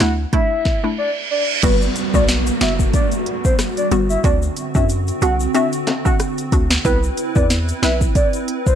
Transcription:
0.00 D2 A3 D4 E4 F#5, snare
0.33 A3 D4 E4 E5, kick, closed hi-hat, reverse cymbal
0.65 kick, snare
0.84 A3 D4 E4
0.98 D5
1.31 D5
1.63 G1 G3 B3 F#4 B4, kick, closed hi-hat, crash, downlifter, shaker
1.82 shaker
1.96 closed hi-hat, shaker
2.14 B1 G3 B3 F#4 D5, kick, shaker
2.28 snare, closed hi-hat, shaker
2.47 closed hi-hat, shaker
2.61 F#1 G3 B3 F#4 E5, snare, closed hi-hat, shaker
2.79 kick, shaker
2.93 D5, kick, closed hi-hat, shaker
3.12 closed hi-hat, shaker
3.26 closed hi-hat
3.45 C5, kick, shaker
3.59 cross-stick, snare, closed hi-hat, shaker
3.77 D5, closed hi-hat, shaker
3.91 G1 G3 B3 F#4, closed hi-hat, shaker
4.10 E5, shaker
4.24 D2 D3 C4 D4 F#4 D5, kick, closed hi-hat, shaker
4.42 shaker
4.57 closed hi-hat, shaker
4.75 F#2 C4 D4 F#4 E5, kick, shaker
4.89 closed hi-hat, shaker
5.08 closed hi-hat, shaker
5.22 C2 C4 D4 F#4 F#5, closed hi-hat, shaker
5.40 shaker
5.54 C4 D4 F#4 E5, closed hi-hat, shaker
5.73 closed hi-hat, shaker
5.87 snare, closed hi-hat, high timbale
6.05 C4 D4 F#4 F#5, kick, shaker
6.20 cross-stick, closed hi-hat, shaker
6.38 closed hi-hat, shaker
6.52 D2 C4 D4 F#4, kick, closed hi-hat, shaker
6.71 snare, shaker
6.85 C2 C4 E4 B4, kick, closed hi-hat, shaker
7.03 shaker
7.17 closed hi-hat, shaker
7.36 E2 C4 E4 B4 D5, kick, shaker
7.50 snare, closed hi-hat, shaker
7.69 closed hi-hat, shaker
7.83 B1 C4 E4 B4 E5, snare, closed hi-hat, shaker
8.01 kick, shaker
8.15 D5, kick, closed hi-hat, shaker
8.33 closed hi-hat, shaker
8.48 closed hi-hat
8.66 C5, kick, shaker

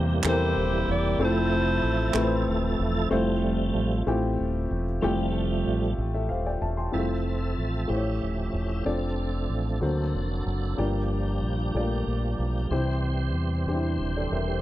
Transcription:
Already playing: E2 C3 E3 G3 A#3 C4 E4 G4 C5
0.23 E2 A#3 C4 E4 G4 A4 C5, clap
0.28 E4 G4
0.32 A#4
0.56 D#1
0.88 E1 D5
1.19 F1 F3 A3 C4 E4 A4 C5
1.83 A1
2.14 A1 F3 A3 C4 E4 B4, clap
2.23 C5
2.47 D#1
2.79 E1
3.10 F1 F3 G3 A3 C4 E4 F4 C5
3.75 A1
4.07 A1 A3 C4 E4 F4 G4
4.39 D#1
4.71 E1
5.02 F1 F3 G3 A3 C4 E4 F4 G4
5.67 A1
5.98 A1
6.14 A4 E5
6.29 D#1 C5 F5
6.46 D5 G5
6.61 E1 E5 A5
6.77 G5 C6
6.92 F1 F3 G3 A3 C4 E4 F4 A4 C5 E5
6.99 A3
7.58 A1
7.88 A1 A2 A3 C#4 E4 F4 G4 C5 E5
7.95 C#5
8.22 D#1
8.53 E1
8.85 F1 C4 D4 F4 A4 D5
9.50 A1
9.81 D2 D3 F#3 A#3 D4 F#4 A4 C5
10.14 F1
10.46 F#1
10.78 G1 G2 F3 G3 A#3 D4 F4 G4 D5
11.42 A#1
11.75 A#1 A3 D4 F4 G4 D5
11.81 A#3
12.07 A#1
12.39 B1
12.71 C2 C3 E3 C4 E4 G4 C5
13.34 E2
13.67 E2 D4 G4 C5
13.74 E4
13.99 D#1
14.17 A4 D5
14.31 E1 A#4 E5
14.48 G4 C5

